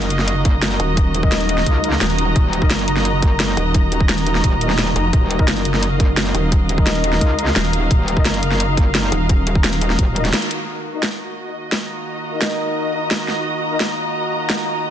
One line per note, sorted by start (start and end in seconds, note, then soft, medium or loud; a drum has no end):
0.00 0.78 F#1 loud
0.00 10.64 D#4 medium
0.00 5.11 F#4 medium
0.00 10.67 F#4 medium
0.00 10.64 A#4 medium
0.00 10.68 D#5 medium
0.00 0.39 F5 medium
0.00 10.64 F5 medium
0.00 closed hi-hat soft
0.10 closed hi-hat medium
0.19 snare soft
0.28 closed hi-hat medium
0.38 5.94 A#5 medium
0.45 kick loud
0.45 closed hi-hat medium
0.62 snare loud
0.62 closed hi-hat loud
0.80 1.65 D#1 medium
0.80 closed hi-hat medium
0.97 kick loud
0.97 closed hi-hat medium
1.14 closed hi-hat medium
1.23 1.82 D#4 medium
1.23 1.82 A#4 medium
1.23 1.82 D#5 loud
1.23 kick loud
1.32 snare loud
1.32 closed hi-hat medium
1.41 closed hi-hat soft
1.49 closed hi-hat medium
1.58 snare soft
1.66 2.00 C#2 medium
1.66 kick medium
1.66 closed hi-hat medium
1.84 1.90 D#4 medium
1.84 1.90 A#4 medium
1.84 1.90 D#5 medium
1.84 closed hi-hat medium
1.93 snare soft
2.01 2.34 D#1 loud
2.01 snare loud
2.01 closed hi-hat loud
2.10 closed hi-hat soft
2.19 closed hi-hat medium
2.36 2.69 D#1 loud
2.36 kick loud
2.36 closed hi-hat medium
2.53 closed hi-hat medium
2.62 2.68 D#4 medium
2.62 2.68 A#4 medium
2.62 2.68 D#5 loud
2.62 kick loud
2.70 3.56 F#1 loud
2.70 snare loud
2.70 closed hi-hat medium
2.79 closed hi-hat soft
2.88 closed hi-hat medium
2.96 snare soft
3.05 closed hi-hat medium
3.22 kick loud
3.22 closed hi-hat medium
3.40 snare loud
3.40 closed hi-hat medium
3.57 4.42 D#1 medium
3.57 closed hi-hat medium
3.74 kick loud
3.74 closed hi-hat medium
3.92 closed hi-hat medium
4.00 kick loud
4.09 snare loud
4.09 closed hi-hat medium
4.18 closed hi-hat soft
4.27 closed hi-hat medium
4.35 snare soft
4.44 4.95 D#1 loud
4.44 kick medium
4.44 closed hi-hat medium
4.61 4.67 D#4 medium
4.61 4.67 A#4 medium
4.61 4.67 D#5 medium
4.61 closed hi-hat medium
4.70 snare soft
4.79 snare loud
4.79 closed hi-hat medium
4.87 closed hi-hat soft
4.96 5.12 F1 medium
4.96 closed hi-hat medium
5.13 5.47 D#1 loud
5.13 10.66 A#5 medium
5.13 kick loud
5.13 closed hi-hat medium
5.31 closed hi-hat medium
5.39 5.46 D#4 medium
5.39 5.45 A#4 medium
5.39 5.45 D#5 loud
5.39 kick loud
5.48 6.33 F#1 medium
5.48 snare loud
5.48 closed hi-hat medium
5.57 closed hi-hat soft
5.65 closed hi-hat medium
5.74 snare soft
5.83 closed hi-hat medium
5.93 10.70 F5 medium
6.00 kick loud
6.00 closed hi-hat medium
6.17 snare loud
6.17 closed hi-hat medium
6.35 7.20 D#1 medium
6.35 closed hi-hat medium
6.52 kick loud
6.52 closed hi-hat medium
6.69 closed hi-hat medium
6.78 7.37 D#4 medium
6.78 7.37 A#4 medium
6.78 7.37 D#5 medium
6.78 kick loud
6.87 snare loud
6.87 closed hi-hat medium
6.95 closed hi-hat soft
7.04 closed hi-hat medium
7.13 snare soft
7.21 7.55 C#2 medium
7.21 kick medium
7.21 closed hi-hat medium
7.39 7.45 D#4 medium
7.39 7.45 A#4 medium
7.39 7.45 D#5 medium
7.39 closed hi-hat medium
7.47 snare soft
7.56 7.89 D#1 medium
7.56 snare loud
7.56 closed hi-hat loud
7.65 closed hi-hat soft
7.73 closed hi-hat medium
7.91 8.24 D#1 loud
7.91 kick loud
7.91 closed hi-hat medium
8.08 closed hi-hat medium
8.17 8.23 D#4 medium
8.17 8.23 A#4 medium
8.17 8.23 D#5 loud
8.17 kick loud
8.25 9.11 F#1 loud
8.25 snare loud
8.25 closed hi-hat medium
8.34 closed hi-hat soft
8.43 closed hi-hat medium
8.51 snare soft
8.60 closed hi-hat loud
8.77 kick loud
8.77 closed hi-hat medium
8.95 snare loud
8.95 closed hi-hat loud
9.12 9.97 D#1 medium
9.12 closed hi-hat medium
9.29 kick loud
9.29 closed hi-hat medium
9.47 closed hi-hat medium
9.55 kick loud
9.64 snare loud
9.64 closed hi-hat medium
9.73 closed hi-hat soft
9.81 closed hi-hat medium
9.90 snare soft
9.99 10.32 D#1 medium
9.99 kick medium
9.99 closed hi-hat loud
10.16 10.22 D#4 medium
10.16 10.22 A#4 medium
10.16 10.22 D#5 medium
10.16 closed hi-hat medium
10.25 snare soft
10.25 closed hi-hat soft
10.33 snare loud
10.33 closed hi-hat loud
10.42 closed hi-hat soft
10.51 closed hi-hat medium
10.68 14.90 D#4 medium
10.68 14.90 F#4 medium
10.68 14.90 A#4 medium
10.68 14.90 F5 medium
10.68 14.90 F#5 medium
10.91 11.00 D#4 medium
10.91 11.00 A#4 medium
10.91 14.90 D#5 medium
10.91 11.00 D#5 loud
11.03 snare loud
11.72 snare loud
11.81 14.90 A#5 medium
12.33 12.92 D#4 medium
12.33 12.92 A#4 medium
12.33 12.92 D#5 medium
12.42 snare loud
12.94 13.00 D#4 medium
12.94 13.00 A#4 medium
12.94 13.00 D#5 medium
13.11 snare loud
13.28 snare soft
13.72 13.78 D#4 medium
13.72 13.78 A#4 medium
13.72 13.78 D#5 loud
13.80 snare loud
14.50 snare loud